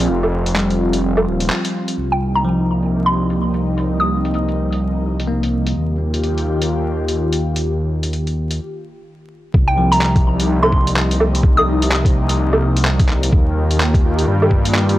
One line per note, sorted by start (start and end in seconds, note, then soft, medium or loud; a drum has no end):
0.00 0.32 F3 medium
0.00 1.94 C4 medium
0.00 1.94 F4 medium
0.09 1.26 F1 medium
0.23 low woodblock soft
0.46 closed hi-hat medium
0.55 2.17 G3 medium
0.55 clap loud
0.55 closed hi-hat soft
0.70 closed hi-hat soft
0.93 closed hi-hat medium
1.17 low woodblock medium
1.28 1.50 D#1 medium
1.40 closed hi-hat medium
1.50 clap loud
1.65 closed hi-hat soft
1.88 closed hi-hat medium
1.97 5.74 C2 medium
1.97 5.72 C3 medium
1.97 5.72 G3 medium
1.97 8.55 A#3 medium
1.97 5.72 D#4 medium
2.12 2.33 G5 medium
2.35 2.60 A#5 medium
2.35 closed hi-hat soft
2.44 4.10 F3 medium
2.44 closed hi-hat soft
2.59 closed hi-hat soft
2.83 closed hi-hat soft
3.06 3.31 C6 medium
3.30 closed hi-hat soft
3.54 closed hi-hat soft
3.78 closed hi-hat medium
4.00 4.48 D#6 medium
4.25 closed hi-hat soft
4.34 closed hi-hat soft
4.49 closed hi-hat soft
4.73 closed hi-hat soft
5.20 closed hi-hat medium
5.27 5.95 A#3 medium
5.43 closed hi-hat soft
5.66 closed hi-hat medium
5.76 8.60 D#2 medium
5.76 8.57 D#3 medium
5.76 8.57 F4 medium
5.76 8.57 G4 medium
6.14 closed hi-hat soft
6.24 closed hi-hat soft
6.38 closed hi-hat soft
6.62 closed hi-hat medium
7.08 closed hi-hat medium
7.32 closed hi-hat soft
7.56 closed hi-hat medium
8.03 closed hi-hat soft
8.13 closed hi-hat soft
8.27 closed hi-hat soft
8.51 closed hi-hat soft
9.52 11.42 C2 loud
9.52 13.28 C3 medium
9.52 13.28 G3 medium
9.52 14.99 A#3 medium
9.52 13.28 D#4 medium
9.52 kick loud
9.68 9.89 G5 medium
9.78 11.43 F3 medium
9.92 10.16 A#5 medium
9.92 closed hi-hat medium
10.01 clap loud
10.01 closed hi-hat soft
10.16 kick loud
10.16 closed hi-hat soft
10.40 closed hi-hat medium
10.63 10.87 C6 medium
10.63 low woodblock medium
10.72 kick medium
10.87 closed hi-hat medium
10.96 clap loud
11.11 closed hi-hat soft
11.20 low woodblock medium
11.35 closed hi-hat medium
11.43 13.31 C2 loud
11.43 kick loud
11.57 12.05 D#6 medium
11.57 low woodblock soft
11.82 closed hi-hat medium
11.92 clap loud
11.92 closed hi-hat soft
12.05 kick loud
12.05 closed hi-hat soft
12.29 closed hi-hat medium
12.53 low woodblock medium
12.77 closed hi-hat medium
12.85 clap loud
12.99 kick loud
12.99 closed hi-hat soft
13.09 clap medium
13.23 closed hi-hat medium
13.32 14.26 D#2 loud
13.32 14.99 D#3 medium
13.32 14.99 F4 medium
13.32 14.99 G4 medium
13.32 kick loud
13.71 closed hi-hat medium
13.80 clap loud
13.80 closed hi-hat soft
13.94 kick loud
13.94 closed hi-hat soft
14.19 closed hi-hat medium
14.28 14.99 G2 medium
14.42 low woodblock medium
14.51 kick medium
14.65 closed hi-hat medium
14.75 clap loud
14.89 closed hi-hat soft